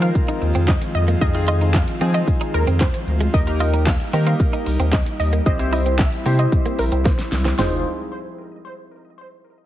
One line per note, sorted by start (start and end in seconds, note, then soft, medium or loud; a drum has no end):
0.00 3.30 D#3 medium
0.00 3.30 F3 medium
0.00 3.30 G#3 medium
0.00 0.45 C4 medium
0.00 3.30 C4 medium
0.00 0.10 C4 medium
0.00 0.45 D#4 medium
0.00 0.45 F4 medium
0.00 3.30 F4 medium
0.00 0.45 A#4 medium
0.00 0.39 F5 medium
0.00 closed hi-hat medium
0.00 shaker medium
0.15 kick loud
0.15 shaker medium
0.28 0.36 D#4 medium
0.28 closed hi-hat medium
0.28 shaker medium
0.42 0.52 D#2 medium
0.42 muted clean electric guitar stroke soft
0.42 shaker medium
0.55 0.76 F2 medium
0.55 0.63 C4 medium
0.55 closed hi-hat medium
0.55 shaker medium
0.68 0.76 C4 medium
0.68 0.77 D#5 medium
0.68 kick loud
0.68 snare loud
0.68 clap loud
0.68 shaker medium
0.81 muted clean electric guitar stroke soft
0.81 closed hi-hat medium
0.81 shaker medium
0.95 1.15 F2 medium
0.95 1.04 D#5 medium
0.95 shaker soft
1.08 1.16 A#3 medium
1.08 closed hi-hat medium
1.08 shaker medium
1.21 1.83 F2 loud
1.21 1.28 C4 medium
1.21 1.28 D#4 medium
1.21 1.28 F4 medium
1.21 1.29 G#4 medium
1.21 1.40 D#5 loud
1.21 kick loud
1.21 shaker medium
1.34 1.70 C4 medium
1.34 1.70 D#4 medium
1.34 1.70 F4 medium
1.34 1.70 G#4 medium
1.34 muted clean electric guitar stroke soft
1.34 closed hi-hat soft
1.34 shaker soft
1.48 1.56 F4 medium
1.48 1.66 D#5 medium
1.48 shaker medium
1.61 1.69 D#4 medium
1.61 closed hi-hat medium
1.61 shaker medium
1.74 1.84 F5 medium
1.74 muted clean electric guitar stroke soft
1.74 kick loud
1.74 snare medium
1.74 clap loud
1.74 shaker medium
1.88 closed hi-hat medium
1.88 shaker medium
2.01 2.22 F3 loud
2.01 2.58 C4 medium
2.01 2.09 C4 medium
2.01 2.58 D#4 medium
2.01 2.58 F4 medium
2.01 2.58 G#4 medium
2.01 shaker medium
2.14 2.22 C4 medium
2.14 2.32 D#5 medium
2.14 closed hi-hat medium
2.14 shaker medium
2.27 kick loud
2.27 shaker medium
2.41 2.49 D#4 medium
2.41 closed hi-hat medium
2.41 shaker medium
2.54 2.64 D#2 medium
2.54 2.63 A#4 medium
2.54 muted clean electric guitar stroke soft
2.54 shaker medium
2.67 2.88 F2 medium
2.67 2.75 C4 medium
2.67 closed hi-hat medium
2.67 shaker medium
2.80 2.88 C4 medium
2.80 3.18 C5 medium
2.80 kick loud
2.80 snare loud
2.80 clap loud
2.80 shaker medium
2.94 muted clean electric guitar stroke soft
2.94 closed hi-hat medium
2.94 shaker medium
3.07 3.28 D2 medium
3.07 shaker soft
3.20 3.28 G#3 medium
3.20 closed hi-hat medium
3.20 shaker medium
3.34 3.96 D#2 loud
3.34 7.55 G3 medium
3.34 3.41 A#3 medium
3.34 5.44 A#3 medium
3.34 5.44 D#4 medium
3.34 3.41 D#4 medium
3.34 3.41 G4 medium
3.34 3.41 A#4 medium
3.34 3.52 D#5 loud
3.34 kick loud
3.34 shaker medium
3.47 3.82 A#3 medium
3.47 3.82 D#4 medium
3.47 3.83 G4 medium
3.47 3.83 A#4 medium
3.47 muted clean electric guitar stroke soft
3.47 closed hi-hat medium
3.47 shaker soft
3.60 3.68 F4 medium
3.60 3.79 D#5 medium
3.60 open hi-hat medium
3.60 shaker medium
3.74 3.81 D#4 medium
3.74 closed hi-hat medium
3.74 shaker medium
3.86 3.96 F5 medium
3.86 muted clean electric guitar stroke soft
3.86 kick loud
3.86 snare medium
3.86 clap loud
3.86 tambourine medium
3.86 shaker medium
4.00 closed hi-hat medium
4.00 shaker medium
4.13 4.34 D#3 loud
4.13 4.70 A#3 medium
4.13 4.21 C4 medium
4.13 4.70 D#4 medium
4.13 4.70 G4 medium
4.13 4.70 A#4 medium
4.13 open hi-hat medium
4.13 shaker medium
4.27 4.34 C4 medium
4.27 4.64 F5 medium
4.27 closed hi-hat medium
4.27 shaker medium
4.40 kick loud
4.40 shaker medium
4.53 4.61 D#4 medium
4.53 closed hi-hat medium
4.53 shaker medium
4.66 4.77 C2 medium
4.66 muted clean electric guitar stroke soft
4.66 open hi-hat medium
4.66 shaker medium
4.80 5.00 D#2 medium
4.80 4.87 C4 medium
4.80 closed hi-hat medium
4.80 shaker medium
4.92 5.01 C4 medium
4.92 5.02 D#5 medium
4.92 kick loud
4.92 snare loud
4.92 clap loud
4.92 tambourine medium
4.92 shaker medium
5.06 muted clean electric guitar stroke soft
5.06 closed hi-hat medium
5.06 shaker medium
5.20 5.40 D#2 loud
5.20 5.29 D#5 medium
5.20 open hi-hat medium
5.20 shaker soft
5.33 5.41 A#3 medium
5.33 closed hi-hat medium
5.33 shaker medium
5.46 6.08 C2 loud
5.46 5.53 C4 medium
5.46 7.56 C4 medium
5.46 7.56 E4 medium
5.46 5.53 E4 medium
5.46 5.53 G4 medium
5.46 5.53 C5 medium
5.46 5.64 D#5 loud
5.46 kick loud
5.46 shaker medium
5.59 5.95 C4 medium
5.59 5.95 E4 medium
5.59 5.95 G4 medium
5.59 5.95 C5 medium
5.59 muted clean electric guitar stroke soft
5.59 closed hi-hat soft
5.59 shaker soft
5.73 5.80 E4 medium
5.73 5.91 D#5 medium
5.73 open hi-hat medium
5.73 shaker medium
5.86 5.94 C4 medium
5.86 closed hi-hat medium
5.86 shaker medium
5.99 6.08 E5 medium
5.99 muted clean electric guitar stroke soft
5.99 kick loud
5.99 snare loud
5.99 clap loud
5.99 tambourine medium
5.99 shaker medium
6.12 closed hi-hat medium
6.12 shaker medium
6.26 6.46 C3 loud
6.26 6.33 A#3 medium
6.26 6.82 C4 medium
6.26 6.82 E4 medium
6.26 6.83 G4 medium
6.26 6.83 C5 medium
6.26 open hi-hat medium
6.26 shaker medium
6.39 6.47 C4 medium
6.39 6.57 D#5 medium
6.39 closed hi-hat medium
6.39 shaker medium
6.52 kick loud
6.52 shaker medium
6.66 6.73 A#3 medium
6.66 closed hi-hat medium
6.66 shaker medium
6.79 6.89 A#1 loud
6.79 6.88 A#4 medium
6.79 muted clean electric guitar stroke soft
6.79 open hi-hat medium
6.79 shaker medium
6.92 7.13 C2 medium
6.92 7.00 C4 medium
6.92 closed hi-hat medium
6.92 shaker medium
7.05 7.13 A#3 medium
7.05 7.43 C5 medium
7.05 kick loud
7.05 snare medium
7.05 tambourine medium
7.05 shaker medium
7.19 muted clean electric guitar stroke soft
7.19 snare medium
7.19 closed hi-hat medium
7.19 shaker medium
7.32 7.53 C2 medium
7.32 snare medium
7.32 open hi-hat medium
7.32 shaker soft
7.45 7.53 C4 medium
7.45 snare medium
7.45 closed hi-hat medium
7.45 shaker medium
7.58 7.83 F1 loud
7.58 7.74 C4 medium
7.58 7.83 D#4 medium
7.58 7.83 F4 medium
7.58 7.83 G#4 medium
7.58 7.83 C5 medium
7.58 snare loud
7.58 floor tom loud
7.58 open hi-hat medium
7.58 tambourine medium